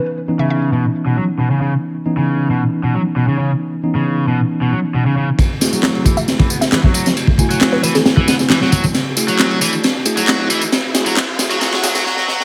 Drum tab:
RD |----------------|----------------|----------------|x-xxxxx-xx-xx-x-|
TB |----------------|----------------|----------------|x-xxx-xxx-xxx-xx|
CP |----------------|----------------|----------------|----x-------x---|
SD |----------------|----------------|----------------|--o-o---o--oo--o|
BD |----------------|----------------|----------------|o-----o--o---o--|

RD |x-x-x-x-x-x-x-x-|x-xxxxx-x-x-x-x-|x-x-x-x-xxxx----|
TB |x-xxx-xxx-xxx-xx|x-xxx-xxx-xxx-xx|x-xxx-xxx-xx----|
CP |----x-------x---|----x-------x---|----x-----------|
SD |----oo-oo-oooo--|o---o---o---o---|o-o-o-o-oooooooo|
BD |-oo------o----oo|----------------|----------------|